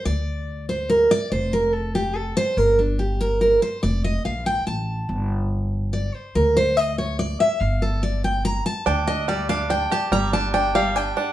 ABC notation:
X:1
M:3/4
L:1/8
Q:1/4=143
K:Gm
V:1 name="Steel-string acoustic guitar"
d3 c B d | c B A G A c | B D G B B c | d e f g a2- |
a2 z2 d c | B c e ^c d =e | f A d g b a | g e d f g a |
b a g f g ^f |]
V:2 name="Five-string banjo"
z6 | z6 | z6 | z6 |
z6 | z6 | z6 | D D G, D D G |
G, D D G, D D |]
V:3 name="Upright bass" clef=bass
D,,6 | F,,,6 | G,,,6 | F,,,2 B,,,2 A,,,2 |
G,,,6 | D,,6 | G,,,6 | D,,6 |
G,,,6 |]